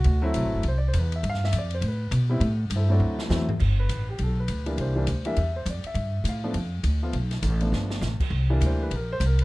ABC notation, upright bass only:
X:1
M:4/4
L:1/8
Q:"Swing" 1/4=203
K:Gmix
V:1 name="Upright bass" clef=bass
D,,2 (3B,,, A,,, ^F,,, C,,2 E,,2 | G,,2 F,,2 A,,2 B,,2 | A,,2 G,,2 D,,2 E,,2 | G,,,2 A,,,2 B,,,2 D,,2 |
C,,2 D,,2 E,,2 F,, z | G,,2 A,,2 F,,2 D,,2 | B,,,2 A,,,2 G,,,2 A,,, z | C,,2 D,,2 _B,,,2 C,,2 |]